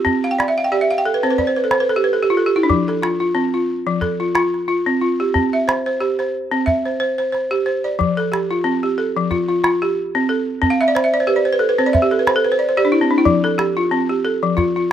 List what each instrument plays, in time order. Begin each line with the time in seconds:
Already playing: balafon F4 G4
0.05 balafon C4, calabash thump
0.24 balafon F5, calabash click
0.31 balafon G5
0.39 balafon D5, calabash click
0.48 balafon E5
0.58 balafon F5
0.64 balafon G5
0.72 balafon G4 D5
0.81 balafon E5
0.91 balafon F5
0.98 balafon G5
1.05 balafon A4
1.14 balafon B4
1.23 balafon C4 C5
1.30 balafon B4
1.38 balafon D5, calabash thump, calabash click
1.47 balafon C5
1.56 balafon B4
1.64 balafon A4
1.71 balafon C5, calabash click
1.80 balafon B4
1.89 balafon A4, calabash click
1.96 balafon G4
2.04 balafon B4
2.13 balafon A4
2.23 balafon G4
2.30 balafon F4
2.37 balafon A4
2.46 balafon G4
2.56 balafon E4
2.63 balafon D4
2.70 balafon F3, calabash thump
2.88 balafon A4, calabash click
3.02 balafon F4, calabash click
3.20 balafon F4
3.35 balafon C4
3.54 balafon F4
3.87 balafon F3
4.01 balafon A4, calabash thump, calabash click
4.20 balafon F4
4.35 balafon F4, calabash click
4.54 calabash click
4.68 balafon F4
4.86 balafon C4
5.01 balafon F4
5.20 balafon G4
5.34 balafon C4, calabash thump
5.53 balafon E5
5.68 balafon C5, calabash click
5.86 balafon C5
6.00 balafon G4, calabash click
6.19 balafon C5, calabash click
6.51 balafon C4
6.66 balafon E5, calabash thump, calabash click
6.86 balafon C5, calabash click
7.00 balafon C5
7.18 balafon C5, calabash click
7.32 balafon C5, calabash click
7.51 balafon G4, calabash click
7.66 balafon C5
7.84 balafon D5
7.99 balafon F3, calabash thump
8.17 balafon A4, calabash click
8.32 balafon G4, calabash click
8.51 balafon F4
8.64 balafon C4
8.83 balafon G4
8.98 balafon A4
9.16 balafon F3
9.31 balafon F4, calabash thump, calabash click
9.49 balafon F4
9.64 balafon F4, calabash click
9.82 balafon G4, calabash click
10.15 balafon C4
10.29 balafon A4
10.62 balafon C4, calabash thump
10.70 balafon F5
10.81 balafon E5, calabash click
10.88 balafon D5
10.95 balafon C5, calabash click
11.04 balafon E5
11.14 balafon D5
11.20 balafon C5
11.27 balafon G4 B4
11.36 balafon D5
11.45 balafon C5
11.53 balafon B4
11.59 balafon A4
11.69 balafon B4
11.78 balafon C4 C5
11.86 balafon D5
11.93 balafon E5, calabash thump, calabash click
12.02 balafon G4
12.11 balafon A4
12.19 balafon B4
12.27 balafon C5, calabash click
12.36 balafon A4
12.45 balafon B4, calabash click
12.52 balafon C5
12.59 balafon D5
12.69 balafon C5
12.77 balafon G4 D5
12.85 balafon D4
12.92 balafon E4
13.01 balafon C4
13.11 balafon D4
13.18 balafon E4
13.25 balafon F3, calabash thump
13.44 balafon A4, calabash click
13.58 balafon G4, calabash click
13.77 balafon F4
13.91 balafon C4
14.09 balafon G4
14.25 balafon A4
14.43 balafon F3
14.57 balafon F4, calabash thump, calabash click
14.76 balafon F4